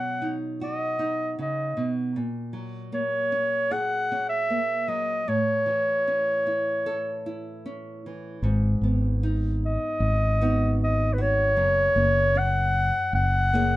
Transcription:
0.00 1.38 B2 medium
0.00 2.11 F#3 medium
0.00 2.92 C#4 medium
0.00 0.61 F#4 soft
0.00 0.36 F#5 medium
0.22 0.98 D#4 soft
0.61 3.71 F#4 medium
0.61 1.36 D#5 medium
0.99 2.11 D#4 medium
1.39 1.76 C#3 medium
1.39 1.94 D#5 medium
1.77 2.16 B2 medium
2.16 5.23 A#2 medium
2.53 4.87 F#3 soft
2.92 4.49 A#3 medium
2.92 3.74 C#5 medium
3.32 4.10 C#4 medium
3.71 5.23 G#4 medium
3.71 4.29 F#5 medium
4.12 6.06 C#4 medium
4.29 4.90 E5 medium
4.50 5.23 A#3 soft
4.88 5.23 F#3 medium
4.88 5.30 D#5 medium
5.28 8.38 A2 medium
5.28 7.64 C#5 medium
5.66 8.03 E3 medium
6.08 7.64 C#4 medium
6.47 7.24 E4 medium
6.86 8.39 A4 medium
7.26 8.39 E4 medium
7.66 8.39 C#4 soft
8.06 8.44 E3 soft
8.42 8.74 G#1 medium
8.42 11.52 G#2 medium
8.81 9.76 G#1 medium
8.81 10.40 B3 soft
9.23 10.40 D#4 medium
9.65 10.77 D#5 medium
10.00 11.57 G#1 medium
10.41 11.53 B3 medium
10.41 11.53 D#4 medium
10.41 11.18 F#4 medium
10.84 11.15 D#5 medium
11.13 11.23 B4 medium
11.18 13.55 F#4 medium
11.18 12.39 C#5 medium
11.57 11.88 F#1 medium
11.57 13.77 F#2 medium
11.96 12.90 F#1 medium
11.96 13.52 A#3 soft
12.35 13.52 C#4 medium
12.35 13.14 F#5 loud
13.13 13.77 F#1 medium
13.13 13.77 F#5 medium
13.53 13.77 A#3 medium
13.53 13.77 C#4 medium
13.53 13.77 G#4 medium

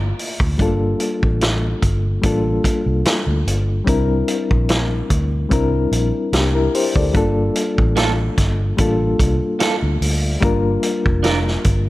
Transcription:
0.00 0.12 G1 medium
0.00 0.59 A3 soft
0.00 0.61 A#3 soft
0.00 0.61 F4 medium
0.00 0.14 F5 medium
0.19 open hi-hat medium
0.40 0.56 D2 medium
0.40 kick medium
0.58 0.94 G1 medium
0.58 1.71 G3 medium
0.58 0.66 A3 medium
0.58 1.72 D4 medium
0.58 1.73 F4 medium
0.58 kick medium
0.58 closed hi-hat medium
0.62 1.75 A#3 medium
0.62 1.73 A4 medium
1.00 closed hi-hat medium
1.23 1.73 A1 medium
1.23 kick medium
1.41 snare medium
1.41 closed hi-hat medium
1.82 2.17 G1 medium
1.82 kick medium
1.82 closed hi-hat medium
2.22 2.58 A1 medium
2.22 3.35 G3 medium
2.22 3.36 A#3 medium
2.22 3.36 D4 medium
2.22 3.37 F4 medium
2.22 3.37 A4 medium
2.22 kick medium
2.22 closed hi-hat medium
2.64 kick medium
2.64 closed hi-hat medium
2.86 3.02 C2 medium
3.05 snare medium
3.05 closed hi-hat medium
3.27 3.43 D2 medium
3.45 3.80 G1 medium
3.45 closed hi-hat medium
3.85 4.22 C2 medium
3.85 4.98 G3 medium
3.85 4.99 C4 medium
3.85 4.99 D4 medium
3.85 5.00 E4 medium
3.85 kick medium
3.85 closed hi-hat medium
3.89 5.00 A#4 medium
4.28 closed hi-hat medium
4.51 5.01 A#1 medium
4.51 kick medium
4.69 snare medium
4.69 closed hi-hat medium
5.10 5.45 D2 medium
5.10 kick medium
5.10 closed hi-hat medium
5.49 5.86 C2 medium
5.49 6.63 G3 medium
5.49 6.63 C4 medium
5.49 6.33 D4 medium
5.49 6.33 E4 medium
5.49 6.34 A#4 medium
5.49 kick medium
5.49 closed hi-hat medium
5.92 6.10 A#1 medium
5.92 closed hi-hat medium
6.33 6.67 C2 medium
6.33 6.54 D4 soft
6.33 6.54 G4 medium
6.33 snare medium
6.33 closed hi-hat medium
6.55 6.73 E4 medium
6.55 6.73 A#4 medium
6.75 6.95 G4 soft
6.75 6.95 C5 medium
6.75 open hi-hat medium
6.96 7.12 D2 medium
6.96 7.16 A4 medium
6.96 7.35 D5 medium
6.96 kick medium
7.13 7.49 G1 medium
7.13 8.26 G3 medium
7.13 8.27 A#3 medium
7.13 8.27 D4 medium
7.13 8.28 F4 medium
7.13 8.28 A4 medium
7.13 kick loud
7.13 closed hi-hat medium
7.56 closed hi-hat medium
7.78 8.28 A1 medium
7.78 kick medium
7.96 8.11 A#3 medium
7.96 8.11 F4 medium
7.96 8.11 A4 medium
7.96 snare medium
7.96 closed hi-hat medium
8.38 8.72 G1 medium
8.38 kick medium
8.38 snare soft
8.38 closed hi-hat medium
8.77 9.13 A1 medium
8.77 9.90 G3 medium
8.77 9.91 A#3 medium
8.77 9.91 D4 medium
8.77 9.92 F4 medium
8.77 kick medium
8.77 closed hi-hat medium
8.81 9.92 A4 medium
9.19 9.38 C2 medium
9.19 kick medium
9.19 closed hi-hat medium
9.59 9.74 A#3 medium
9.59 9.74 F4 medium
9.59 9.75 A4 medium
9.59 snare medium
9.59 closed hi-hat medium
9.83 9.98 D2 medium
10.01 10.36 D2 medium
10.01 open hi-hat medium
10.40 10.77 G1 medium
10.40 11.54 G3 medium
10.40 11.54 A#3 medium
10.40 11.55 D4 medium
10.40 11.55 F4 medium
10.40 kick loud
10.40 closed hi-hat medium
10.45 11.56 A#4 medium
10.83 closed hi-hat medium
11.06 11.56 F1 medium
11.06 kick medium
11.23 11.38 D4 medium
11.23 11.38 F4 medium
11.23 11.39 A#4 medium
11.23 snare medium
11.23 closed hi-hat medium
11.48 snare soft
11.64 11.89 G1 medium
11.64 kick medium
11.64 closed hi-hat medium

